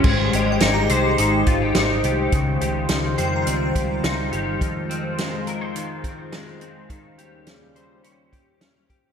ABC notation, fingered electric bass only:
X:1
M:4/4
L:1/8
Q:1/4=105
K:Ab
V:1 name="Fingered electric bass" clef=bass
A,,, A,,, A,,, C,, A,,, A,,, A,,, C,, | D,, D,, D,, F,, D,, D,, D,, G,,, | z8 | z8 |]